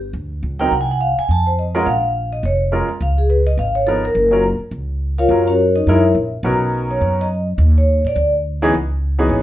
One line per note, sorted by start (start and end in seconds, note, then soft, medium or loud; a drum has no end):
0.00 0.11 G1 medium
0.13 0.41 D2 medium
0.43 0.69 C#2 medium
0.59 0.70 F#3 medium
0.59 0.71 C4 medium
0.59 0.71 D#4 medium
0.59 0.71 A#4 medium
0.59 0.71 G5 medium
0.71 1.14 C2 medium
0.71 0.81 F#5 medium
0.81 0.90 G#5 medium
0.91 1.00 F#5 medium
1.01 1.17 F5 medium
1.18 1.29 G#5 medium
1.18 muted upright bass stroke soft
1.29 1.83 F2 medium
1.29 1.47 A5 medium
1.47 1.58 C5 medium
1.59 1.75 D#5 medium
1.75 1.85 G#3 medium
1.75 1.85 C#4 medium
1.75 1.85 F4 medium
1.75 1.85 A#4 medium
1.75 1.87 F#5 medium
1.86 2.41 A#1 medium
1.86 2.29 F5 medium
2.33 2.43 D#5 medium
2.43 2.86 F1 medium
2.43 2.55 C#5 medium
2.72 2.87 G#3 medium
2.72 2.87 C#4 medium
2.72 2.88 F4 medium
2.72 2.88 A#4 medium
2.88 muted upright bass stroke soft
3.01 3.55 C#2 medium
3.01 3.18 F5 medium
3.18 3.29 G#4 medium
3.30 3.46 B4 medium
3.47 3.58 D#5 medium
3.58 4.12 G#1 medium
3.58 3.75 F5 medium
3.75 3.86 C#5 medium
3.87 4.02 F3 medium
3.87 4.03 B3 soft
3.87 4.03 D#4 soft
3.87 4.03 A4 medium
3.87 4.03 A#4 medium
4.05 4.42 A#4 medium
4.15 4.57 F#1 medium
4.31 4.42 F#3 medium
4.31 4.42 C#4 medium
4.31 4.43 F4 soft
4.31 4.43 A#4 medium
4.59 muted upright bass stroke soft
4.71 5.26 C#2 medium
5.18 5.45 F4 medium
5.18 5.45 A#4 medium
5.18 5.45 C#5 medium
5.18 5.45 F5 medium
5.29 5.83 F#2 medium
5.29 5.45 F#3 medium
5.29 5.45 C#4 soft
5.29 5.45 F4 soft
5.29 5.46 A#4 medium
5.47 5.74 C#4 medium
5.47 5.74 F#4 medium
5.47 5.74 A#4 medium
5.47 5.74 C#5 medium
5.76 5.87 D#4 medium
5.76 5.87 D#5 medium
5.87 6.13 F#2 medium
5.87 6.03 G#3 medium
5.87 6.03 D#4 medium
5.87 6.03 E4 medium
5.87 6.14 E4 medium
5.87 6.03 A#4 medium
5.87 6.15 A#4 medium
5.87 6.15 C#5 medium
5.87 6.14 E5 medium
6.15 6.42 A#1 medium
6.43 6.98 B1 medium
6.43 7.23 F#3 medium
6.43 7.23 B3 medium
6.43 7.23 C#4 medium
6.43 7.23 D#4 medium
6.43 7.23 A#4 medium
6.91 7.17 C#5 medium
7.01 7.55 F#2 medium
7.21 7.46 D#5 medium
7.58 8.01 D#2 medium
7.78 8.03 C#5 medium
8.05 8.15 A2 medium
8.05 8.32 D5 medium
8.16 8.70 D2 medium
8.62 8.72 E3 medium
8.62 8.72 B3 medium
8.62 8.72 C#4 medium
8.62 8.72 D#4 medium
8.62 8.72 G#4 medium
8.74 9.28 C#2 medium
9.18 9.43 E3 medium
9.18 9.43 B3 medium
9.18 9.43 C#4 medium
9.18 9.43 D#4 medium
9.18 9.43 G#4 medium
9.29 9.43 G#1 medium
9.29 9.43 C#5 medium